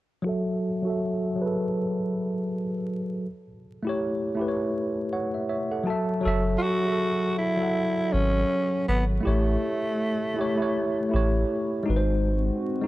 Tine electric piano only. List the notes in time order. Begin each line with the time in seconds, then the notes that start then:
0.22 F#3 F#4
0.26 A4 E5
0.83 F#3 F#4
0.87 A4 E5
1.35 F#3 F#4
1.40 G#4 B4
1.46 A4
3.83 A3 E4
3.87 G4 C#5
4.35 A3 E4
4.39 G4 B4
4.48 C#5
5.13 C#5 F#5
5.34 E5
5.49 C#5 E5
5.71 A4 F#5
5.83 F#3 F#4 A5
5.88 A4 E5
6.21 F#3 F#4
6.25 A4 E5
6.81 F#3 F#4
6.85 G#4 E5
6.92 A4
7.56 F#3 F#4
7.61 A4 F#5
9.20 A3 E4
9.25 G4 C#5
10.34 A3 E4
10.39 G4 C#5
10.55 A3 E4
10.60 G4 C#5
11.09 A3 E4
11.14 G4 C#5
11.83 G#3 D#4
11.88 F#4 B4
11.96 C5
12.82 G#3 D#4